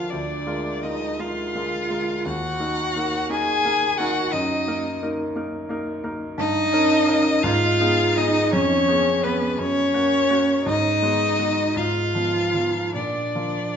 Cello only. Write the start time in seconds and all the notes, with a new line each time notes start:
0.10 D4
0.83 D#4
1.20 F4
2.27 F#4
3.31 G#4
3.99 F#4
4.33 D#4
6.38 D#4
7.43 F4
8.16 D#4
8.53 C#4
9.23 B3
9.58 C#4
10.65 D#4
11.76 F4
12.96 D4